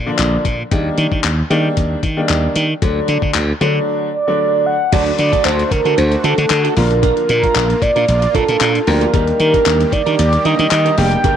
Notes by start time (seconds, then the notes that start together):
0.06 D3 F3 A#3 D4
0.19 A#1, clap, closed hi-hat
0.45 A#2, kick, closed hi-hat
0.71 D#2 D#3 G3 A#3 D4, kick, closed hi-hat
0.98 D#3, closed hi-hat
1.12 D#3, kick
1.24 D#2, clap, closed hi-hat
1.50 D#3 G3 A#3 D4, closed hi-hat
1.77 D#2, kick, closed hi-hat
2.03 D#3, kick, closed hi-hat
2.17 D#3 G3 A#3 D4
2.29 D#2, clap, closed hi-hat
2.56 D#3, closed hi-hat
2.82 D2 D3 F#3 A3 D4, kick, closed hi-hat
3.08 D3, closed hi-hat
3.22 D3, kick
3.34 D2, clap, closed hi-hat
3.61 D3 F#3 A3 D4, closed hi-hat
4.14 D5
4.27 D3 F#3 A3 D4
4.66 F#5
4.92 D2 D3 F#3 A3 D4 F#4 A4 D5, kick, closed hi-hat, crash
5.06 muted clean electric guitar stroke, closed hi-hat
5.18 D3 D5, muted clean electric guitar stroke, closed hi-hat
5.32 D4 F#4 A4, kick, closed hi-hat
5.45 D2 D4 F#4 A4 C5, clap, closed hi-hat
5.59 muted clean electric guitar stroke, closed hi-hat
5.71 D3 A#4, muted clean electric guitar stroke, kick, closed hi-hat
5.85 D3 D4 F#4 A4, closed hi-hat
5.98 D2 C5, closed hi-hat
6.11 muted clean electric guitar stroke, closed hi-hat
6.24 D3 D4 F#4 A4, closed hi-hat
6.38 D3, muted clean electric guitar stroke, closed hi-hat
6.50 D3, muted clean electric guitar stroke, clap, closed hi-hat
6.64 D4 F#4 A4, closed hi-hat
6.76 A#1 D3 F3 A#3 D4 F4 A#4, muted clean electric guitar stroke, open hi-hat
6.90 muted clean electric guitar stroke, closed hi-hat
7.03 D4 F4 A#4, kick, closed hi-hat
7.17 muted clean electric guitar stroke, closed hi-hat
7.29 A#2 A#4, muted clean electric guitar stroke, closed hi-hat
7.43 D4 F4 A#4, kick, closed hi-hat
7.55 A#1 D4 F4 A#4, clap, closed hi-hat
7.69 muted clean electric guitar stroke, closed hi-hat
7.82 A#2 D5, muted clean electric guitar stroke, kick, closed hi-hat
7.96 A#2 D4 F4 A#4, closed hi-hat
8.08 A#1 D5, muted clean electric guitar stroke, closed hi-hat
8.22 muted clean electric guitar stroke, closed hi-hat
8.34 A#2 D4 F4 A4 A#4, kick, closed hi-hat
8.48 A#2 D4 F4 A#4, closed hi-hat
8.61 A#2 D4 F4 A#4, clap, closed hi-hat
8.75 muted clean electric guitar stroke, closed hi-hat
8.87 D2 D3 F3 A#3 D4 G4 A#4, muted clean electric guitar stroke, open hi-hat
9.01 D4 F4 A#4, closed hi-hat
9.13 D#2 D#3 G3 A#3 D4 D#4 G4 A#4, kick, closed hi-hat
9.27 muted clean electric guitar stroke, closed hi-hat
9.40 D#3 A#4, muted clean electric guitar stroke, closed hi-hat
9.53 D4 G4 A#4, kick, closed hi-hat
9.66 D#2 D4 G4 A#4, clap, closed hi-hat
9.80 muted clean electric guitar stroke, closed hi-hat
9.92 D#3 D5, muted clean electric guitar stroke, kick, closed hi-hat
10.06 D#3 D4 G4 A#4, closed hi-hat
10.19 D#2 D5, closed hi-hat
10.32 muted clean electric guitar stroke, closed hi-hat
10.45 D#3 D4 G4 A#4 D#5, closed hi-hat
10.59 D#3, muted clean electric guitar stroke, closed hi-hat
10.71 D#3, muted clean electric guitar stroke, clap, closed hi-hat
10.85 D4 G4 A#4, closed hi-hat
10.97 F1 G3 A#3 D4 D#4 G4 G5, muted clean electric guitar stroke, open hi-hat
11.11 muted clean electric guitar stroke, closed hi-hat
11.24 G1 G3 A#3 D4 G4 A#4, kick, closed hi-hat